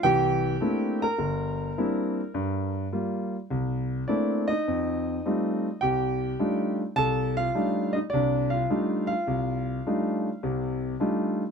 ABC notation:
X:1
M:4/4
L:1/8
Q:"Swing" 1/4=104
K:F
V:1 name="Grand piano"
[Gg]3 [Bb]4- [Bb]- | [Bb] z4 z d [_E_e]- | [_E_e]4 [Gg]3 z | [Aa] [Ff]2 [_E_e] [Dd] [Ff]2 [Ff]- |
[Ff]4- [Ff] z3 |]
V:2 name="Grand piano"
[C,,E,]2 [A,B,CDE] z G,,,2 [G,B,CDE] z | G,,2 [G,B,F] z C,,2 [A,B,CDE] z | F,,2 [G,A,C_EF] z C,,2 [G,A,DEF] z | C,,2 [G,A,D_EF] z C,,2 [G,A,DEF] z |
C,,2 [G,A,D_EF] z [C,,C,]2 [G,A,DEF] z |]